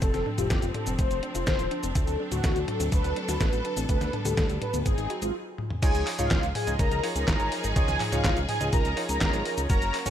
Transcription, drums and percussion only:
0.02 kick, closed hi-hat, cabasa
0.14 snare, closed hi-hat, cabasa
0.26 high tom
0.38 closed hi-hat, high tom, cabasa
0.50 kick, snare, closed hi-hat, cabasa
0.62 closed hi-hat, cabasa
0.74 closed hi-hat, high tom
0.87 closed hi-hat, cabasa
0.99 kick, closed hi-hat, cabasa
1.11 closed hi-hat, cabasa
1.23 closed hi-hat
1.35 closed hi-hat, cabasa
1.47 kick, snare, closed hi-hat, cabasa
1.59 closed hi-hat, cabasa
1.71 closed hi-hat
1.83 closed hi-hat, cabasa
1.95 kick, closed hi-hat, cabasa
2.07 closed hi-hat, cabasa
2.32 closed hi-hat, high tom, cabasa
2.44 kick, snare, closed hi-hat, cabasa
2.56 closed hi-hat, cabasa
2.68 closed hi-hat, high tom
2.80 closed hi-hat, cabasa
2.92 kick, closed hi-hat, cabasa
3.04 closed hi-hat, cabasa
3.16 closed hi-hat
3.29 snare, closed hi-hat, cabasa
3.41 kick, snare, closed hi-hat, cabasa
3.53 closed hi-hat, cabasa
3.65 closed hi-hat
3.77 closed hi-hat, cabasa
3.89 kick, closed hi-hat, cabasa
4.01 snare, closed hi-hat, cabasa
4.13 closed hi-hat, high tom
4.25 closed hi-hat, high tom, cabasa
4.37 kick, snare, closed hi-hat, cabasa
4.50 closed hi-hat, cabasa
4.62 closed hi-hat, high tom
4.74 closed hi-hat, cabasa
4.86 kick, closed hi-hat, cabasa
4.98 closed hi-hat, cabasa
5.10 closed hi-hat
5.22 closed hi-hat, cabasa
5.58 high tom
5.70 mid tom
5.83 kick, closed hi-hat, crash, cabasa
5.95 closed hi-hat, cabasa
6.07 clap, open hi-hat
6.19 closed hi-hat, high tom, cabasa
6.31 kick, snare, clap, closed hi-hat, cabasa
6.43 closed hi-hat, cabasa
6.55 open hi-hat, high tom
6.67 closed hi-hat, cabasa
6.79 kick, closed hi-hat, cabasa
6.91 closed hi-hat, cabasa
7.04 open hi-hat
7.16 closed hi-hat, cabasa
7.28 kick, snare, clap, closed hi-hat, cabasa
7.40 closed hi-hat, cabasa
7.52 open hi-hat
7.64 closed hi-hat, cabasa
7.76 kick, closed hi-hat, cabasa
7.88 snare, closed hi-hat, cabasa
8.00 clap, open hi-hat, high tom
8.12 closed hi-hat, high tom, cabasa
8.24 kick, snare, clap, closed hi-hat, cabasa
8.37 closed hi-hat, cabasa
8.49 open hi-hat, high tom
8.61 closed hi-hat, cabasa
8.73 kick, closed hi-hat, cabasa
8.85 closed hi-hat, cabasa
8.97 open hi-hat
9.09 closed hi-hat, cabasa
9.21 kick, snare, clap, closed hi-hat, cabasa
9.33 closed hi-hat, cabasa
9.45 open hi-hat
9.58 closed hi-hat, cabasa
9.70 kick, closed hi-hat, cabasa
9.82 closed hi-hat, cabasa
9.94 clap, open hi-hat
10.06 closed hi-hat, high tom, cabasa

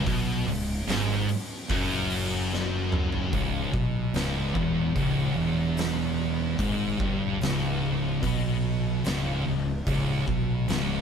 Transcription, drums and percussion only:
0.06 kick, open hi-hat
0.48 open hi-hat
0.88 snare, open hi-hat
1.29 open hi-hat
1.69 kick, open hi-hat
2.10 open hi-hat
2.53 snare
2.92 mid tom
3.12 floor tom
3.33 kick, open hi-hat
3.74 kick
4.14 snare, open hi-hat
4.55 kick
4.96 kick, open hi-hat
5.77 snare, open hi-hat
6.59 kick, open hi-hat
7.00 kick
7.41 snare, open hi-hat
8.23 kick, open hi-hat
9.05 snare, open hi-hat
9.87 kick, open hi-hat
10.28 kick
10.68 snare, open hi-hat

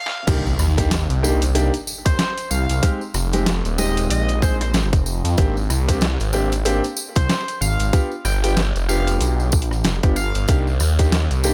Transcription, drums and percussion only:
0.06 snare
0.27 kick, closed hi-hat, crash, tambourine
0.46 tambourine
0.59 cross-stick, tambourine
0.78 kick, closed hi-hat, tambourine
0.91 snare, closed hi-hat, tambourine
1.10 closed hi-hat, tambourine
1.24 tambourine
1.42 closed hi-hat, tambourine
1.55 closed hi-hat, tambourine
1.74 closed hi-hat, tambourine
1.87 tambourine
2.06 kick, closed hi-hat, tambourine
2.19 snare, closed hi-hat, tambourine
2.37 closed hi-hat, tambourine
2.51 tambourine
2.69 closed hi-hat, tambourine
2.83 kick, closed hi-hat, tambourine
3.01 tambourine
3.14 cross-stick, tambourine
3.33 closed hi-hat, tambourine
3.46 snare, closed hi-hat, tambourine
3.65 closed hi-hat, tambourine
3.78 tambourine
3.97 closed hi-hat, tambourine
4.10 closed hi-hat, tambourine
4.28 closed hi-hat, tambourine
4.42 kick, tambourine
4.61 cross-stick, closed hi-hat, tambourine
4.74 snare, closed hi-hat, tambourine
4.93 kick, closed hi-hat, tambourine
5.06 tambourine
5.25 closed hi-hat, tambourine
5.37 kick, closed hi-hat, tambourine
5.57 tambourine
5.70 cross-stick, tambourine
5.89 kick, closed hi-hat, tambourine
6.01 snare, closed hi-hat, tambourine
6.20 closed hi-hat, tambourine
6.33 tambourine
6.52 closed hi-hat, tambourine
6.65 closed hi-hat, tambourine
6.84 closed hi-hat, tambourine
6.97 tambourine
7.16 kick, closed hi-hat, tambourine
7.29 snare, closed hi-hat, tambourine
7.48 closed hi-hat, tambourine
7.62 tambourine
7.79 closed hi-hat, tambourine
7.93 kick, closed hi-hat, tambourine
8.11 tambourine
8.25 cross-stick, tambourine
8.44 closed hi-hat, tambourine
8.57 snare, closed hi-hat, tambourine
8.76 closed hi-hat, tambourine
8.89 tambourine
9.07 closed hi-hat, tambourine
9.21 closed hi-hat, tambourine
9.40 tambourine
9.52 kick, tambourine
9.62 closed hi-hat
9.71 cross-stick, tambourine
9.84 snare, closed hi-hat, tambourine
10.03 kick, closed hi-hat, tambourine
10.16 tambourine
10.35 closed hi-hat, tambourine
10.48 kick, closed hi-hat, tambourine
10.67 tambourine
10.80 cross-stick, tambourine
10.99 kick, closed hi-hat, tambourine
11.12 snare, closed hi-hat, tambourine
11.31 closed hi-hat, tambourine
11.44 tambourine

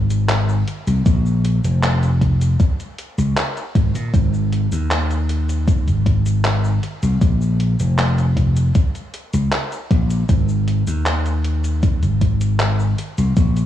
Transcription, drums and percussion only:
0.10 closed hi-hat, cabasa
0.29 clap, closed hi-hat, cabasa
0.49 cabasa
0.68 closed hi-hat
0.87 closed hi-hat, cabasa
1.06 kick, closed hi-hat, cabasa
1.26 cabasa
1.45 closed hi-hat
1.64 closed hi-hat, cabasa
1.83 clap, closed hi-hat, cabasa
2.03 closed hi-hat, cabasa
2.21 kick, closed hi-hat
2.41 closed hi-hat, cabasa
2.60 kick, closed hi-hat, cabasa
2.80 closed hi-hat, cabasa
2.98 closed hi-hat
3.18 closed hi-hat, cabasa
3.37 clap, closed hi-hat, cabasa
3.57 closed hi-hat, cabasa
3.75 kick, closed hi-hat
3.95 closed hi-hat, cabasa
4.14 kick, closed hi-hat, cabasa
4.34 cabasa
4.52 closed hi-hat
4.72 closed hi-hat, cabasa
4.91 clap, closed hi-hat, cabasa
5.11 closed hi-hat, cabasa
5.29 closed hi-hat
5.49 closed hi-hat, cabasa
5.68 kick, closed hi-hat, cabasa
5.88 closed hi-hat, cabasa
6.06 kick, closed hi-hat
6.26 closed hi-hat, cabasa
6.45 clap, closed hi-hat, cabasa
6.64 cabasa
6.83 closed hi-hat
7.03 closed hi-hat, cabasa
7.21 kick, closed hi-hat, cabasa
7.42 cabasa
7.60 closed hi-hat
7.80 closed hi-hat, cabasa
7.98 clap, closed hi-hat, cabasa
8.18 closed hi-hat, cabasa
8.37 kick, closed hi-hat
8.57 closed hi-hat, cabasa
8.75 kick, closed hi-hat, cabasa
8.95 closed hi-hat, cabasa
9.14 closed hi-hat
9.33 closed hi-hat, cabasa
9.52 clap, closed hi-hat, cabasa
9.72 closed hi-hat, cabasa
9.91 kick, closed hi-hat
10.10 closed hi-hat, cabasa
10.29 kick, closed hi-hat, cabasa
10.49 cabasa
10.68 closed hi-hat
10.87 closed hi-hat, cabasa
11.06 clap, closed hi-hat, cabasa
11.26 closed hi-hat, cabasa
11.44 closed hi-hat
11.64 closed hi-hat, cabasa
11.83 kick, closed hi-hat, cabasa
12.03 closed hi-hat, cabasa
12.21 kick, closed hi-hat
12.41 closed hi-hat, cabasa
12.60 clap, closed hi-hat, cabasa
12.80 cabasa
12.98 closed hi-hat
13.18 closed hi-hat, cabasa
13.37 kick, closed hi-hat, cabasa
13.57 closed hi-hat, cabasa

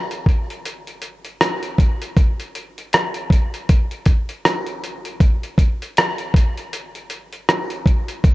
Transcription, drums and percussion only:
0.11 closed hi-hat
0.26 kick, closed hi-hat
0.50 closed hi-hat
0.65 closed hi-hat
0.87 closed hi-hat
1.02 closed hi-hat
1.25 closed hi-hat
1.41 cross-stick, closed hi-hat
1.63 closed hi-hat
1.78 kick, closed hi-hat
2.02 closed hi-hat
2.17 kick, closed hi-hat
2.40 closed hi-hat
2.55 closed hi-hat
2.78 closed hi-hat
2.93 cross-stick, closed hi-hat
3.14 closed hi-hat
3.30 kick, closed hi-hat
3.54 closed hi-hat
3.69 kick, closed hi-hat
3.91 closed hi-hat
4.06 kick, closed hi-hat
4.29 closed hi-hat
4.45 cross-stick, closed hi-hat
4.66 closed hi-hat
4.84 closed hi-hat
5.05 closed hi-hat
5.20 kick, closed hi-hat
5.43 closed hi-hat
5.58 kick, closed hi-hat
5.82 closed hi-hat
5.97 cross-stick, closed hi-hat
6.18 closed hi-hat
6.34 kick, closed hi-hat
6.57 closed hi-hat
6.73 closed hi-hat
6.95 closed hi-hat
7.10 closed hi-hat
7.32 closed hi-hat
7.49 cross-stick, closed hi-hat
7.70 closed hi-hat
7.86 kick, closed hi-hat
8.08 closed hi-hat
8.24 kick, closed hi-hat

